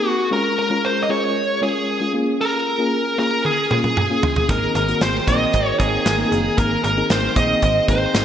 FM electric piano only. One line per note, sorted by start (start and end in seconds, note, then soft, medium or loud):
0.00 0.34 A#3 medium
0.00 0.34 C4 medium
0.00 0.34 D#4 medium
0.00 0.32 G#4 medium
0.00 0.34 A#4 medium
0.31 0.56 G#3 medium
0.31 0.56 C#4 medium
0.31 0.56 F4 medium
0.31 0.56 G#4 medium
0.70 0.95 G#3 medium
0.70 0.95 C#4 medium
0.70 0.95 F4 medium
0.70 0.96 A#4 medium
1.09 1.42 G#3 medium
1.09 1.42 C#4 medium
1.09 1.42 F4 medium
1.09 1.43 G#4 medium
1.61 1.86 G#3 medium
1.61 1.86 C#4 medium
1.61 1.87 F4 medium
1.61 1.87 G#4 medium
2.00 2.14 G#3 medium
2.00 2.13 C#4 medium
2.00 2.13 F4 medium
2.00 2.13 G#4 medium
2.13 2.66 A#3 medium
2.13 2.66 C#4 medium
2.13 2.67 F4 medium
2.13 2.67 G#4 medium
2.79 3.03 A#3 medium
2.79 3.04 C#4 medium
2.79 3.04 F4 medium
2.79 3.04 G#4 medium
3.18 3.51 A#3 medium
3.18 3.51 C#4 medium
3.18 3.51 F4 medium
3.18 3.51 G#4 medium
3.70 3.95 A#3 medium
3.70 3.95 C#4 medium
3.70 3.95 F4 medium
3.70 3.96 G#4 medium
4.10 4.34 A#3 medium
4.10 4.35 C#4 medium
4.10 4.35 F4 medium
4.10 4.35 G#4 medium
4.49 4.73 A#3 medium
4.49 4.74 C4 medium
4.49 4.74 D#4 medium
4.49 4.74 G#4 medium
4.88 5.12 A#3 medium
4.88 5.13 C4 medium
4.88 5.13 D#4 medium
4.88 5.13 F#4 medium
5.27 5.60 A#3 medium
5.27 5.60 C4 medium
5.27 5.60 D#4 medium
5.27 5.60 A#4 medium
5.79 6.04 A#3 medium
5.79 6.04 C4 medium
5.79 6.04 D#4 medium
5.79 6.04 G#4 medium
6.18 6.43 A#3 medium
6.18 6.43 C4 medium
6.18 6.43 D#4 medium
6.18 6.43 G#4 medium
6.57 6.82 A#3 medium
6.57 6.82 C4 medium
6.57 6.82 D#4 medium
6.57 6.82 G#4 medium
6.97 7.21 A#3 medium
6.97 7.21 C4 medium
6.97 7.22 D#4 medium
6.97 7.22 G#4 medium
7.36 7.68 A#3 medium
7.36 7.69 C4 medium
7.36 7.69 D#4 medium
7.36 7.69 G#4 medium
7.88 8.12 A#3 medium
7.88 8.13 C4 medium
7.88 8.13 D#4 medium
7.88 8.13 G#4 medium